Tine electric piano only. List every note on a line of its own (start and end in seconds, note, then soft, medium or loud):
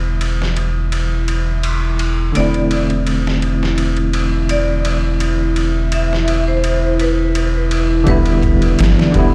0.00 2.30 D3 medium
0.00 2.31 G3 medium
0.00 2.32 B3 medium
0.00 2.33 E4 medium
2.32 8.01 D3 medium
2.32 8.02 A3 medium
2.37 8.04 C4 medium
2.37 8.05 E4 medium
8.04 9.08 D3 medium
8.04 9.10 G3 medium
8.09 9.11 B3 medium
8.09 9.12 E4 medium
9.12 9.35 D3 medium
9.12 9.35 G3 medium
9.16 9.35 B3 medium
9.16 9.35 E4 medium